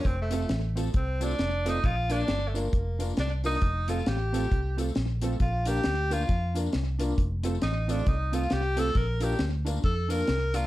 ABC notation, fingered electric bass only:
X:1
M:4/4
L:1/8
Q:"Swing" 1/4=135
K:Bb
V:1 name="Fingered electric bass" clef=bass
F,,,2 A,,,2 C,,2 F,,,2 | B,,,2 G,,,2 F,,,2 C,,2 | F,,,2 A,,,2 C,,2 B,,,2 | B,,,2 D,,2 F,,2 C,,2 |
F,,,2 A,,,2 C,,2 C,,2 | B,,,2 D,,2 F,,2 C,,2 |]